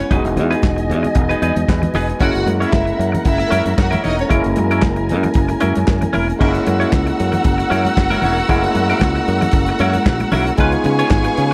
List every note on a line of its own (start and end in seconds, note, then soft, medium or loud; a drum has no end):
0.00 0.11 B3 medium
0.00 0.13 C#4 medium
0.00 0.14 E4 medium
0.00 closed hi-hat soft
0.10 0.20 E1 loud
0.10 0.17 F#3 medium
0.10 2.17 B3 medium
0.10 0.29 D#4 medium
0.10 2.18 D#4 medium
0.10 2.18 F#4 medium
0.10 0.24 G#4 medium
0.10 0.23 B4 loud
0.10 2.19 D#5 medium
0.10 2.19 G#5 medium
0.10 kick loud
0.10 closed hi-hat medium
0.16 2.20 G#3 medium
0.24 0.38 E1 medium
0.24 muted clean electric guitar stroke soft
0.24 closed hi-hat soft
0.24 muted conga soft
0.37 0.54 E2 medium
0.37 muted clean electric guitar stroke soft
0.37 closed hi-hat medium
0.37 high conga medium
0.51 0.61 D#4 medium
0.51 0.62 G#4 medium
0.51 0.62 B4 medium
0.51 closed hi-hat soft
0.62 0.91 E1 medium
0.62 muted clean electric guitar stroke soft
0.62 kick loud
0.62 snare medium
0.62 clap medium
0.62 high conga medium
0.76 muted clean electric guitar stroke soft
0.76 closed hi-hat soft
0.76 muted conga soft
0.90 1.07 E2 loud
0.90 closed hi-hat medium
1.03 muted clean electric guitar stroke soft
1.03 closed hi-hat medium
1.03 high conga soft
1.03 low conga medium
1.15 1.33 E1 loud
1.15 muted clean electric guitar stroke soft
1.15 kick loud
1.15 closed hi-hat medium
1.29 1.41 D#4 soft
1.29 1.41 G#4 soft
1.29 1.42 B4 medium
1.29 closed hi-hat soft
1.29 muted conga soft
1.42 1.51 E2 loud
1.42 1.60 D#4 medium
1.42 1.56 G#4 medium
1.42 1.55 B4 medium
1.42 closed hi-hat medium
1.42 high conga medium
1.56 1.64 E2 medium
1.56 muted clean electric guitar stroke medium
1.56 closed hi-hat medium
1.56 high conga medium
1.68 1.85 E2 medium
1.68 1.94 B4 medium
1.68 muted clean electric guitar stroke soft
1.68 kick loud
1.68 snare loud
1.68 clap medium
1.68 muted conga soft
1.82 muted clean electric guitar stroke soft
1.82 closed hi-hat soft
1.82 muted conga soft
1.82 high conga medium
1.82 low conga medium
1.94 2.11 E1 medium
1.94 2.12 D#4 medium
1.94 2.09 G#4 loud
1.94 2.08 B4 loud
1.94 2.20 G#5 medium
1.94 snare soft
1.94 open hi-hat medium
1.94 low conga medium
2.09 muted clean electric guitar stroke medium
2.09 closed hi-hat soft
2.20 2.30 F#1 loud
2.20 4.26 G#3 medium
2.20 4.27 A#3 medium
2.20 2.39 C#4 loud
2.20 4.27 C#4 medium
2.20 2.35 E4 medium
2.20 4.27 E4 medium
2.20 2.42 F#4 loud
2.20 6.36 A#4 medium
2.20 2.33 A#4 medium
2.20 2.42 F#5 loud
2.20 4.29 F#5 medium
2.20 kick loud
2.20 closed hi-hat medium
2.20 muted conga soft
2.35 2.43 F#1 medium
2.35 muted clean electric guitar stroke soft
2.35 closed hi-hat soft
2.46 2.64 F#2 loud
2.46 muted clean electric guitar stroke soft
2.46 closed hi-hat medium
2.46 high conga loud
2.60 2.71 C#4 medium
2.60 2.72 E4 medium
2.60 2.97 E4 medium
2.60 2.73 C#5 medium
2.60 2.97 E5 medium
2.60 closed hi-hat soft
2.72 2.90 F#1 loud
2.72 kick loud
2.72 snare medium
2.72 clap medium
2.72 high conga medium
2.85 muted clean electric guitar stroke soft
2.85 closed hi-hat soft
2.99 3.16 F#2 loud
2.99 closed hi-hat medium
3.12 muted clean electric guitar stroke soft
3.12 closed hi-hat medium
3.12 high conga medium
3.12 low conga medium
3.25 3.43 F#1 loud
3.25 3.75 E4 loud
3.25 3.75 E5 loud
3.25 kick loud
3.25 closed hi-hat medium
3.25 muted conga soft
3.38 muted clean electric guitar stroke soft
3.38 closed hi-hat soft
3.38 muted conga soft
3.51 3.61 F#2 loud
3.51 3.69 C#4 medium
3.51 3.65 E4 medium
3.51 3.64 A#4 medium
3.51 closed hi-hat medium
3.51 high conga medium
3.65 3.74 F#2 medium
3.65 muted clean electric guitar stroke soft
3.65 closed hi-hat medium
3.65 high conga medium
3.77 3.95 F#2 loud
3.77 3.89 F#4 medium
3.77 3.89 F#5 medium
3.77 muted clean electric guitar stroke soft
3.77 kick loud
3.77 snare loud
3.77 clap loud
3.77 muted conga soft
3.91 4.01 C#4 medium
3.91 4.02 E4 medium
3.91 4.04 A#4 medium
3.91 4.02 E5 medium
3.91 closed hi-hat soft
3.91 muted conga soft
3.91 high conga medium
3.91 low conga medium
4.02 4.22 E1 medium
4.02 4.17 C#4 medium
4.02 4.16 D#4 medium
4.02 4.17 E4 medium
4.02 4.17 C#5 medium
4.02 4.15 D#5 loud
4.02 open hi-hat medium
4.02 low conga medium
4.17 4.29 C#4 medium
4.17 4.29 C#5 medium
4.17 muted clean electric guitar stroke medium
4.17 closed hi-hat soft
4.29 4.40 F#1 loud
4.29 6.35 G#3 medium
4.29 6.36 A#3 medium
4.29 4.48 C#4 medium
4.29 6.36 C#4 medium
4.29 4.43 E4 medium
4.29 6.37 E4 medium
4.29 4.42 A#4 loud
4.29 6.37 G#5 medium
4.29 kick medium
4.29 closed hi-hat medium
4.29 muted conga soft
4.43 4.53 F#1 loud
4.43 muted clean electric guitar stroke soft
4.43 closed hi-hat soft
4.56 4.85 F#2 loud
4.56 muted clean electric guitar stroke soft
4.56 closed hi-hat medium
4.56 high conga loud
4.71 4.82 C#4 medium
4.71 4.83 E4 medium
4.71 4.83 A#4 medium
4.71 closed hi-hat soft
4.82 5.12 F#1 medium
4.82 kick loud
4.82 snare medium
4.82 clap medium
4.82 muted conga soft
4.82 high conga medium
4.96 muted clean electric guitar stroke soft
4.96 closed hi-hat soft
4.96 muted conga soft
5.09 5.27 F#2 loud
5.09 closed hi-hat medium
5.23 muted clean electric guitar stroke medium
5.23 closed hi-hat soft
5.23 high conga medium
5.23 low conga medium
5.34 5.52 F#1 loud
5.34 kick loud
5.34 closed hi-hat medium
5.49 muted clean electric guitar stroke soft
5.49 closed hi-hat medium
5.49 muted conga soft
5.60 5.72 F#2 loud
5.60 5.79 C#4 medium
5.60 5.75 E4 loud
5.60 5.74 A#4 loud
5.60 closed hi-hat medium
5.60 high conga medium
5.75 5.84 F#2 loud
5.75 muted clean electric guitar stroke medium
5.75 closed hi-hat medium
5.75 high conga medium
5.87 6.05 F#2 loud
5.87 muted clean electric guitar stroke soft
5.87 kick loud
5.87 snare loud
5.87 clap medium
6.01 muted clean electric guitar stroke soft
6.01 closed hi-hat soft
6.01 muted conga soft
6.01 high conga medium
6.01 low conga medium
6.13 6.32 E1 medium
6.13 6.31 C#4 medium
6.13 6.28 E4 loud
6.13 6.27 A#4 loud
6.13 open hi-hat medium
6.13 low conga medium
6.28 muted clean electric guitar stroke medium
6.28 closed hi-hat soft
6.39 6.58 F#1 loud
6.39 8.45 G#3 medium
6.39 8.45 A#3 medium
6.39 6.58 C#4 medium
6.39 8.46 C#4 medium
6.39 6.48 D#4 medium
6.39 6.54 E4 medium
6.39 10.54 F#4 medium
6.39 10.55 A#4 medium
6.39 6.53 A#4 medium
6.39 10.54 F#5 loud
6.39 10.55 F#5 medium
6.39 10.55 E6 medium
6.39 kick loud
6.39 crash medium
6.39 muted conga soft
6.48 8.49 E4 medium
6.54 muted clean electric guitar stroke soft
6.54 closed hi-hat soft
6.66 6.84 F#2 loud
6.66 muted clean electric guitar stroke soft
6.66 closed hi-hat medium
6.66 high conga loud
6.80 6.91 C#4 medium
6.80 6.92 E4 medium
6.80 6.93 C#5 medium
6.80 closed hi-hat soft
6.92 7.10 C#2 loud
6.92 kick loud
6.92 snare medium
6.92 clap medium
6.92 high conga medium
7.07 muted clean electric guitar stroke medium
7.07 closed hi-hat soft
7.20 7.36 F#2 loud
7.20 closed hi-hat medium
7.32 muted clean electric guitar stroke soft
7.32 closed hi-hat soft
7.32 low conga medium
7.44 7.62 F#1 loud
7.44 kick loud
7.44 closed hi-hat medium
7.58 muted clean electric guitar stroke soft
7.58 closed hi-hat soft
7.58 muted conga soft
7.70 7.88 F#2 loud
7.70 7.88 C#4 medium
7.70 7.84 E4 medium
7.70 7.84 A#4 medium
7.70 closed hi-hat medium
7.70 high conga medium
7.85 muted clean electric guitar stroke soft
7.85 closed hi-hat medium
7.85 high conga medium
7.96 8.14 F#1 medium
7.96 muted clean electric guitar stroke soft
7.96 kick loud
7.96 snare loud
7.96 clap medium
7.96 muted conga soft
8.10 8.22 C#4 medium
8.10 8.23 E4 medium
8.10 8.25 A#4 medium
8.10 closed hi-hat soft
8.10 high conga medium
8.22 8.40 E1 loud
8.22 8.37 C#4 medium
8.22 8.37 E4 medium
8.22 8.37 C#5 medium
8.22 open hi-hat medium
8.22 low conga medium
8.37 muted clean electric guitar stroke soft
8.37 closed hi-hat soft
8.49 8.66 F#1 loud
8.49 10.54 G#3 medium
8.49 8.56 A3 medium
8.49 8.67 C#4 medium
8.49 10.55 C#4 medium
8.49 8.64 E4 loud
8.49 10.56 E4 medium
8.49 8.63 A#4 medium
8.49 kick loud
8.49 closed hi-hat medium
8.49 muted conga soft
8.56 10.58 A#3 medium
8.64 muted clean electric guitar stroke medium
8.64 closed hi-hat medium
8.75 8.92 F#2 loud
8.75 muted clean electric guitar stroke soft
8.75 closed hi-hat medium
8.75 high conga medium
8.90 9.01 C#4 medium
8.90 9.01 E4 medium
8.90 9.02 A#4 medium
8.90 closed hi-hat soft
9.00 9.19 C#2 medium
9.00 kick loud
9.00 snare medium
9.00 clap medium
9.00 muted conga soft
9.00 high conga medium
9.15 muted clean electric guitar stroke soft
9.15 closed hi-hat soft
9.28 9.45 F#2 loud
9.28 closed hi-hat medium
9.41 muted clean electric guitar stroke soft
9.41 closed hi-hat medium
9.41 low conga medium
9.51 9.70 F#1 loud
9.51 kick loud
9.51 closed hi-hat medium
9.51 muted conga soft
9.66 muted clean electric guitar stroke soft
9.66 closed hi-hat soft
9.66 muted conga soft
9.79 9.97 F#2 loud
9.79 9.98 C#4 medium
9.79 9.95 E4 loud
9.79 9.94 A#4 loud
9.79 closed hi-hat medium
9.79 high conga medium
9.93 muted clean electric guitar stroke soft
9.93 closed hi-hat medium
9.93 high conga medium
10.06 10.23 A#1 medium
10.06 muted clean electric guitar stroke soft
10.06 kick loud
10.06 snare loud
10.06 clap medium
10.20 muted clean electric guitar stroke medium
10.20 closed hi-hat soft
10.20 muted conga soft
10.20 high conga medium
10.32 10.50 B1 loud
10.32 10.50 C#4 loud
10.32 10.47 E4 loud
10.32 10.45 A#4 loud
10.32 snare soft
10.32 open hi-hat medium
10.32 low conga medium
10.46 muted clean electric guitar stroke soft
10.46 closed hi-hat soft
10.58 10.76 C#2 loud
10.58 11.54 G#3 medium
10.58 11.54 B3 medium
10.58 10.76 C#4 medium
10.58 11.54 D#4 medium
10.58 10.73 F4 medium
10.58 11.54 F4 medium
10.58 11.54 G#4 medium
10.58 11.54 B4 medium
10.58 10.72 B4 loud
10.58 11.54 F5 medium
10.58 11.54 G#5 loud
10.58 11.54 C#6 medium
10.58 kick loud
10.58 closed hi-hat medium
10.58 muted conga soft
10.72 muted clean electric guitar stroke medium
10.72 closed hi-hat soft
10.84 11.02 C#3 loud
10.84 muted clean electric guitar stroke soft
10.84 closed hi-hat medium
10.84 high conga medium
10.99 11.09 C#4 medium
10.99 11.10 F4 medium
10.99 11.11 C#5 medium
10.99 closed hi-hat medium
11.10 11.27 G#1 medium
11.10 kick loud
11.10 snare loud
11.10 clap medium
11.10 muted conga soft
11.10 high conga medium
11.24 muted clean electric guitar stroke medium
11.24 closed hi-hat soft
11.24 muted conga soft
11.37 11.54 C#3 medium
11.37 closed hi-hat medium